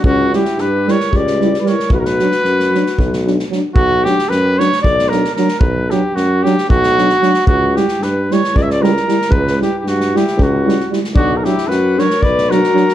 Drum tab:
SD |--ooo-oo-ooooo|-ooooooo-oooo-|--ooo-oo-ooooo|--o-o-oo-ooooo|
BD |o-------o-----|o-------o-----|o-------o-----|o-------o-----|

SD |--ooo-oo-ooooo|-oo-oooo--oooo|--ooo-oo-ooooo|
BD |o-------o-----|o-------o-----|o-------o-----|